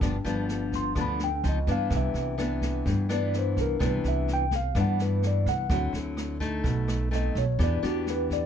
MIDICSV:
0, 0, Header, 1, 5, 480
1, 0, Start_track
1, 0, Tempo, 473335
1, 15, Time_signature, 4, 2, 24, 8
1, 8578, End_track
2, 0, Start_track
2, 0, Title_t, "Tine electric piano"
2, 0, Program_c, 0, 4
2, 766, Note_on_c, 0, 84, 87
2, 984, Note_off_c, 0, 84, 0
2, 1026, Note_on_c, 0, 83, 76
2, 1235, Note_off_c, 0, 83, 0
2, 1255, Note_on_c, 0, 79, 80
2, 1469, Note_off_c, 0, 79, 0
2, 1510, Note_on_c, 0, 75, 75
2, 1717, Note_off_c, 0, 75, 0
2, 1739, Note_on_c, 0, 77, 94
2, 1951, Note_off_c, 0, 77, 0
2, 1993, Note_on_c, 0, 76, 79
2, 2884, Note_off_c, 0, 76, 0
2, 3177, Note_on_c, 0, 74, 83
2, 3390, Note_off_c, 0, 74, 0
2, 3434, Note_on_c, 0, 72, 77
2, 3639, Note_off_c, 0, 72, 0
2, 3662, Note_on_c, 0, 70, 88
2, 3873, Note_off_c, 0, 70, 0
2, 3921, Note_on_c, 0, 71, 73
2, 4122, Note_off_c, 0, 71, 0
2, 4139, Note_on_c, 0, 76, 83
2, 4351, Note_off_c, 0, 76, 0
2, 4397, Note_on_c, 0, 79, 104
2, 4600, Note_off_c, 0, 79, 0
2, 4622, Note_on_c, 0, 77, 93
2, 4833, Note_off_c, 0, 77, 0
2, 4875, Note_on_c, 0, 78, 82
2, 5080, Note_off_c, 0, 78, 0
2, 5089, Note_on_c, 0, 71, 67
2, 5306, Note_off_c, 0, 71, 0
2, 5343, Note_on_c, 0, 74, 80
2, 5554, Note_off_c, 0, 74, 0
2, 5566, Note_on_c, 0, 78, 96
2, 5999, Note_off_c, 0, 78, 0
2, 7255, Note_on_c, 0, 75, 84
2, 7469, Note_off_c, 0, 75, 0
2, 7487, Note_on_c, 0, 73, 90
2, 7705, Note_off_c, 0, 73, 0
2, 7744, Note_on_c, 0, 74, 84
2, 7954, Note_off_c, 0, 74, 0
2, 7968, Note_on_c, 0, 66, 76
2, 8185, Note_off_c, 0, 66, 0
2, 8216, Note_on_c, 0, 71, 88
2, 8430, Note_off_c, 0, 71, 0
2, 8449, Note_on_c, 0, 74, 103
2, 8578, Note_off_c, 0, 74, 0
2, 8578, End_track
3, 0, Start_track
3, 0, Title_t, "Nylon-string guitar"
3, 0, Program_c, 1, 24
3, 14, Note_on_c, 1, 43, 56
3, 18, Note_on_c, 1, 53, 54
3, 22, Note_on_c, 1, 59, 59
3, 22, Note_on_c, 1, 62, 66
3, 157, Note_off_c, 1, 53, 0
3, 157, Note_off_c, 1, 59, 0
3, 160, Note_off_c, 1, 62, 0
3, 248, Note_on_c, 1, 53, 66
3, 253, Note_on_c, 1, 59, 65
3, 261, Note_on_c, 1, 62, 69
3, 934, Note_off_c, 1, 53, 0
3, 935, Note_off_c, 1, 59, 0
3, 940, Note_off_c, 1, 62, 0
3, 952, Note_off_c, 1, 43, 0
3, 973, Note_on_c, 1, 50, 60
3, 980, Note_on_c, 1, 53, 57
3, 981, Note_on_c, 1, 59, 59
3, 985, Note_on_c, 1, 62, 71
3, 1299, Note_off_c, 1, 53, 0
3, 1301, Note_off_c, 1, 59, 0
3, 1303, Note_off_c, 1, 62, 0
3, 1432, Note_off_c, 1, 50, 0
3, 1461, Note_on_c, 1, 53, 57
3, 1467, Note_on_c, 1, 60, 46
3, 1471, Note_on_c, 1, 63, 59
3, 1600, Note_off_c, 1, 53, 0
3, 1603, Note_off_c, 1, 60, 0
3, 1605, Note_off_c, 1, 63, 0
3, 1695, Note_on_c, 1, 52, 60
3, 1703, Note_on_c, 1, 59, 59
3, 1706, Note_on_c, 1, 62, 66
3, 1933, Note_on_c, 1, 48, 60
3, 2400, Note_off_c, 1, 52, 0
3, 2404, Note_off_c, 1, 59, 0
3, 2407, Note_off_c, 1, 62, 0
3, 2410, Note_on_c, 1, 52, 58
3, 2419, Note_on_c, 1, 59, 59
3, 2419, Note_on_c, 1, 62, 63
3, 2871, Note_off_c, 1, 48, 0
3, 2897, Note_on_c, 1, 43, 62
3, 3096, Note_off_c, 1, 52, 0
3, 3098, Note_off_c, 1, 59, 0
3, 3099, Note_off_c, 1, 62, 0
3, 3135, Note_on_c, 1, 52, 65
3, 3139, Note_on_c, 1, 59, 63
3, 3143, Note_on_c, 1, 62, 69
3, 3818, Note_off_c, 1, 52, 0
3, 3818, Note_off_c, 1, 59, 0
3, 3821, Note_off_c, 1, 62, 0
3, 3833, Note_off_c, 1, 43, 0
3, 3848, Note_on_c, 1, 48, 58
3, 3855, Note_on_c, 1, 52, 59
3, 3857, Note_on_c, 1, 59, 55
3, 3859, Note_on_c, 1, 62, 68
3, 4499, Note_off_c, 1, 52, 0
3, 4502, Note_off_c, 1, 59, 0
3, 4502, Note_off_c, 1, 62, 0
3, 4789, Note_off_c, 1, 48, 0
3, 4818, Note_on_c, 1, 43, 56
3, 4819, Note_on_c, 1, 52, 52
3, 4823, Note_on_c, 1, 59, 55
3, 4831, Note_on_c, 1, 62, 58
3, 5739, Note_off_c, 1, 52, 0
3, 5740, Note_off_c, 1, 59, 0
3, 5745, Note_off_c, 1, 62, 0
3, 5754, Note_off_c, 1, 43, 0
3, 5778, Note_on_c, 1, 50, 60
3, 5782, Note_on_c, 1, 54, 58
3, 5786, Note_on_c, 1, 60, 53
3, 5787, Note_on_c, 1, 64, 60
3, 6460, Note_off_c, 1, 54, 0
3, 6461, Note_off_c, 1, 60, 0
3, 6463, Note_off_c, 1, 64, 0
3, 6492, Note_on_c, 1, 57, 73
3, 6500, Note_on_c, 1, 63, 80
3, 6714, Note_off_c, 1, 50, 0
3, 6729, Note_on_c, 1, 47, 65
3, 7176, Note_off_c, 1, 57, 0
3, 7180, Note_off_c, 1, 63, 0
3, 7210, Note_on_c, 1, 57, 58
3, 7217, Note_on_c, 1, 60, 57
3, 7219, Note_on_c, 1, 63, 55
3, 7537, Note_off_c, 1, 57, 0
3, 7538, Note_off_c, 1, 60, 0
3, 7541, Note_off_c, 1, 63, 0
3, 7668, Note_off_c, 1, 47, 0
3, 7693, Note_on_c, 1, 59, 56
3, 7694, Note_on_c, 1, 52, 57
3, 7699, Note_on_c, 1, 62, 60
3, 7707, Note_on_c, 1, 67, 64
3, 7896, Note_off_c, 1, 59, 0
3, 7900, Note_off_c, 1, 62, 0
3, 7901, Note_off_c, 1, 67, 0
3, 7935, Note_on_c, 1, 59, 70
3, 7941, Note_on_c, 1, 62, 62
3, 7941, Note_on_c, 1, 67, 75
3, 8578, Note_off_c, 1, 52, 0
3, 8578, Note_off_c, 1, 59, 0
3, 8578, Note_off_c, 1, 62, 0
3, 8578, Note_off_c, 1, 67, 0
3, 8578, End_track
4, 0, Start_track
4, 0, Title_t, "Upright bass"
4, 0, Program_c, 2, 32
4, 13, Note_on_c, 2, 31, 83
4, 238, Note_off_c, 2, 31, 0
4, 251, Note_on_c, 2, 31, 89
4, 933, Note_off_c, 2, 31, 0
4, 971, Note_on_c, 2, 38, 92
4, 1420, Note_off_c, 2, 38, 0
4, 1457, Note_on_c, 2, 37, 103
4, 1679, Note_off_c, 2, 37, 0
4, 1694, Note_on_c, 2, 43, 90
4, 1918, Note_off_c, 2, 43, 0
4, 1934, Note_on_c, 2, 36, 84
4, 2158, Note_off_c, 2, 36, 0
4, 2169, Note_on_c, 2, 36, 85
4, 2852, Note_off_c, 2, 36, 0
4, 2900, Note_on_c, 2, 43, 87
4, 3578, Note_off_c, 2, 43, 0
4, 3617, Note_on_c, 2, 36, 84
4, 3840, Note_off_c, 2, 36, 0
4, 3862, Note_on_c, 2, 36, 89
4, 4083, Note_off_c, 2, 36, 0
4, 4097, Note_on_c, 2, 36, 83
4, 4776, Note_off_c, 2, 36, 0
4, 4820, Note_on_c, 2, 43, 101
4, 5498, Note_off_c, 2, 43, 0
4, 5539, Note_on_c, 2, 36, 96
4, 5761, Note_off_c, 2, 36, 0
4, 5777, Note_on_c, 2, 38, 96
4, 6000, Note_off_c, 2, 38, 0
4, 6010, Note_on_c, 2, 38, 85
4, 6693, Note_off_c, 2, 38, 0
4, 6736, Note_on_c, 2, 35, 95
4, 7415, Note_off_c, 2, 35, 0
4, 7456, Note_on_c, 2, 35, 91
4, 7679, Note_off_c, 2, 35, 0
4, 7696, Note_on_c, 2, 40, 97
4, 7919, Note_off_c, 2, 40, 0
4, 7938, Note_on_c, 2, 40, 85
4, 8578, Note_off_c, 2, 40, 0
4, 8578, End_track
5, 0, Start_track
5, 0, Title_t, "Drums"
5, 13, Note_on_c, 9, 36, 62
5, 13, Note_on_c, 9, 37, 61
5, 13, Note_on_c, 9, 38, 25
5, 114, Note_off_c, 9, 36, 0
5, 115, Note_off_c, 9, 37, 0
5, 115, Note_off_c, 9, 38, 0
5, 253, Note_on_c, 9, 38, 23
5, 355, Note_off_c, 9, 38, 0
5, 493, Note_on_c, 9, 38, 25
5, 594, Note_off_c, 9, 38, 0
5, 733, Note_on_c, 9, 36, 26
5, 734, Note_on_c, 9, 38, 25
5, 834, Note_off_c, 9, 36, 0
5, 836, Note_off_c, 9, 38, 0
5, 968, Note_on_c, 9, 37, 69
5, 968, Note_on_c, 9, 38, 26
5, 972, Note_on_c, 9, 36, 65
5, 1069, Note_off_c, 9, 37, 0
5, 1069, Note_off_c, 9, 38, 0
5, 1074, Note_off_c, 9, 36, 0
5, 1208, Note_on_c, 9, 38, 26
5, 1309, Note_off_c, 9, 38, 0
5, 1453, Note_on_c, 9, 38, 26
5, 1555, Note_off_c, 9, 38, 0
5, 1692, Note_on_c, 9, 38, 24
5, 1694, Note_on_c, 9, 36, 24
5, 1794, Note_off_c, 9, 38, 0
5, 1795, Note_off_c, 9, 36, 0
5, 1929, Note_on_c, 9, 37, 58
5, 1929, Note_on_c, 9, 38, 23
5, 1934, Note_on_c, 9, 36, 67
5, 2030, Note_off_c, 9, 37, 0
5, 2030, Note_off_c, 9, 38, 0
5, 2035, Note_off_c, 9, 36, 0
5, 2174, Note_on_c, 9, 38, 27
5, 2275, Note_off_c, 9, 38, 0
5, 2415, Note_on_c, 9, 37, 58
5, 2415, Note_on_c, 9, 38, 27
5, 2517, Note_off_c, 9, 37, 0
5, 2517, Note_off_c, 9, 38, 0
5, 2654, Note_on_c, 9, 38, 27
5, 2656, Note_on_c, 9, 36, 28
5, 2756, Note_off_c, 9, 38, 0
5, 2758, Note_off_c, 9, 36, 0
5, 2898, Note_on_c, 9, 36, 64
5, 2899, Note_on_c, 9, 38, 26
5, 3000, Note_off_c, 9, 36, 0
5, 3000, Note_off_c, 9, 38, 0
5, 3136, Note_on_c, 9, 37, 68
5, 3136, Note_on_c, 9, 38, 25
5, 3237, Note_off_c, 9, 37, 0
5, 3237, Note_off_c, 9, 38, 0
5, 3378, Note_on_c, 9, 38, 24
5, 3479, Note_off_c, 9, 38, 0
5, 3615, Note_on_c, 9, 38, 21
5, 3619, Note_on_c, 9, 36, 23
5, 3717, Note_off_c, 9, 38, 0
5, 3720, Note_off_c, 9, 36, 0
5, 3858, Note_on_c, 9, 37, 63
5, 3858, Note_on_c, 9, 38, 25
5, 3859, Note_on_c, 9, 36, 62
5, 3959, Note_off_c, 9, 37, 0
5, 3959, Note_off_c, 9, 38, 0
5, 3961, Note_off_c, 9, 36, 0
5, 4099, Note_on_c, 9, 38, 26
5, 4200, Note_off_c, 9, 38, 0
5, 4339, Note_on_c, 9, 38, 25
5, 4440, Note_off_c, 9, 38, 0
5, 4576, Note_on_c, 9, 38, 28
5, 4577, Note_on_c, 9, 36, 28
5, 4677, Note_off_c, 9, 38, 0
5, 4679, Note_off_c, 9, 36, 0
5, 4816, Note_on_c, 9, 37, 61
5, 4816, Note_on_c, 9, 38, 27
5, 4818, Note_on_c, 9, 36, 67
5, 4917, Note_off_c, 9, 37, 0
5, 4917, Note_off_c, 9, 38, 0
5, 4919, Note_off_c, 9, 36, 0
5, 5057, Note_on_c, 9, 38, 25
5, 5158, Note_off_c, 9, 38, 0
5, 5297, Note_on_c, 9, 38, 26
5, 5398, Note_off_c, 9, 38, 0
5, 5538, Note_on_c, 9, 36, 24
5, 5539, Note_on_c, 9, 38, 22
5, 5639, Note_off_c, 9, 36, 0
5, 5641, Note_off_c, 9, 38, 0
5, 5775, Note_on_c, 9, 37, 66
5, 5775, Note_on_c, 9, 38, 26
5, 5776, Note_on_c, 9, 36, 68
5, 5876, Note_off_c, 9, 37, 0
5, 5876, Note_off_c, 9, 38, 0
5, 5878, Note_off_c, 9, 36, 0
5, 6017, Note_on_c, 9, 38, 25
5, 6119, Note_off_c, 9, 38, 0
5, 6257, Note_on_c, 9, 37, 59
5, 6257, Note_on_c, 9, 38, 23
5, 6358, Note_off_c, 9, 37, 0
5, 6358, Note_off_c, 9, 38, 0
5, 6494, Note_on_c, 9, 36, 27
5, 6498, Note_on_c, 9, 38, 25
5, 6596, Note_off_c, 9, 36, 0
5, 6599, Note_off_c, 9, 38, 0
5, 6734, Note_on_c, 9, 36, 65
5, 6735, Note_on_c, 9, 38, 29
5, 6836, Note_off_c, 9, 36, 0
5, 6836, Note_off_c, 9, 38, 0
5, 6977, Note_on_c, 9, 37, 66
5, 6977, Note_on_c, 9, 38, 26
5, 7078, Note_off_c, 9, 37, 0
5, 7078, Note_off_c, 9, 38, 0
5, 7222, Note_on_c, 9, 38, 26
5, 7323, Note_off_c, 9, 38, 0
5, 7455, Note_on_c, 9, 36, 23
5, 7460, Note_on_c, 9, 38, 25
5, 7557, Note_off_c, 9, 36, 0
5, 7562, Note_off_c, 9, 38, 0
5, 7696, Note_on_c, 9, 36, 60
5, 7699, Note_on_c, 9, 37, 60
5, 7699, Note_on_c, 9, 38, 24
5, 7797, Note_off_c, 9, 36, 0
5, 7800, Note_off_c, 9, 37, 0
5, 7800, Note_off_c, 9, 38, 0
5, 7941, Note_on_c, 9, 38, 25
5, 8042, Note_off_c, 9, 38, 0
5, 8180, Note_on_c, 9, 38, 27
5, 8282, Note_off_c, 9, 38, 0
5, 8417, Note_on_c, 9, 36, 26
5, 8421, Note_on_c, 9, 38, 27
5, 8518, Note_off_c, 9, 36, 0
5, 8522, Note_off_c, 9, 38, 0
5, 8578, End_track
0, 0, End_of_file